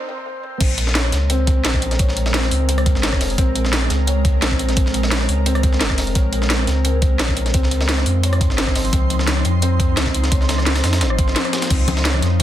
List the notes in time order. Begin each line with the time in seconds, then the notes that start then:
Already playing: C4
0.09 C4
0.26 C4
0.43 C4
0.61 A#1 G#3 C4 A#4, kick, closed hi-hat, crash
0.78 closed hi-hat
0.87 snare
0.95 C#5, snare, closed hi-hat
1.04 cross-stick
1.12 C#2, snare, closed hi-hat
1.30 C4, closed hi-hat
1.47 kick, closed hi-hat
1.65 A#1, snare, closed hi-hat
1.74 kick, snare
1.82 closed hi-hat
1.91 snare, closed hi-hat
1.99 A#1 C#5, kick, closed hi-hat
2.08 snare
2.17 closed hi-hat
2.26 snare
2.34 C4, snare, closed hi-hat
2.43 cross-stick, snare
2.51 C#2, closed hi-hat, open hi-hat
2.69 C4, closed hi-hat
2.78 cross-stick, closed hi-hat
2.86 kick, closed hi-hat
2.95 G#1, snare
3.03 C#5, snare, closed hi-hat
3.13 kick, cross-stick, snare
3.21 F1, snare, closed hi-hat, open hi-hat
3.30 closed hi-hat
3.38 A#1 C4, kick, closed hi-hat
3.55 closed hi-hat
3.65 snare
3.73 C4, snare, closed hi-hat
3.82 cross-stick
3.90 C#2, snare, closed hi-hat
4.07 C#5, closed hi-hat
4.25 kick, closed hi-hat
4.42 A#1 C4, snare, closed hi-hat
4.51 kick, snare
4.59 closed hi-hat
4.69 snare, closed hi-hat
4.77 A#1 C4, kick, closed hi-hat
4.86 snare
4.94 closed hi-hat
5.03 snare
5.12 C#5, snare, closed hi-hat
5.21 cross-stick, snare
5.29 C#2, closed hi-hat, open hi-hat
5.46 C4, closed hi-hat
5.55 cross-stick, closed hi-hat
5.63 kick, closed hi-hat
5.73 snare
5.81 F1 A#4, snare, closed hi-hat
5.90 kick, cross-stick, snare
5.98 snare, closed hi-hat, open hi-hat
6.07 closed hi-hat
6.15 A#1 C#5, kick, closed hi-hat
6.33 closed hi-hat
6.42 snare
6.50 C4, snare, closed hi-hat
6.59 cross-stick
6.67 C#2, snare, closed hi-hat
6.85 C4, closed hi-hat
7.02 kick, closed hi-hat
7.19 A#1 C#5, snare, closed hi-hat
7.29 kick, snare
7.37 closed hi-hat
7.46 snare, closed hi-hat
7.54 C#2 F3 C4 D#4 C6, kick, closed hi-hat
7.63 snare
7.71 closed hi-hat
7.81 snare
7.89 C4, snare, closed hi-hat
7.98 cross-stick, snare
8.06 F2, closed hi-hat, open hi-hat
8.23 C#5, closed hi-hat
8.33 cross-stick, closed hi-hat
8.41 kick, closed hi-hat
8.50 G#1, snare
8.58 C4, snare, closed hi-hat
8.67 kick, cross-stick, snare
8.75 G#1, snare, closed hi-hat, open hi-hat
8.85 closed hi-hat
8.93 C#2 C4, kick, closed hi-hat
9.10 closed hi-hat
9.19 snare
9.27 C#5, snare, closed hi-hat
9.37 cross-stick
9.45 F2, closed hi-hat
9.62 C4, closed hi-hat
9.80 kick, closed hi-hat
9.97 C#2 C4, snare, closed hi-hat
10.06 kick, snare
10.14 closed hi-hat
10.23 snare, closed hi-hat
10.32 C#2 C#5, kick, closed hi-hat
10.41 snare
10.49 snare, closed hi-hat
10.58 cross-stick, snare
10.66 C4, snare, closed hi-hat
10.75 cross-stick, snare, closed hi-hat
10.84 F2, snare, closed hi-hat, open hi-hat
10.93 snare, closed hi-hat
11.01 G#1 C4, snare, closed hi-hat
11.10 cross-stick
11.18 kick, closed hi-hat
11.28 snare
11.36 C4, snare, closed hi-hat
11.45 cross-stick, closed hi-hat
11.53 snare, closed hi-hat
11.62 snare, closed hi-hat
11.70 C#2 C4, kick, closed hi-hat, crash
11.88 closed hi-hat, high conga
11.97 snare
12.05 C#5, snare, closed hi-hat
12.14 cross-stick, high conga
12.22 F2, snare, closed hi-hat
12.40 closed hi-hat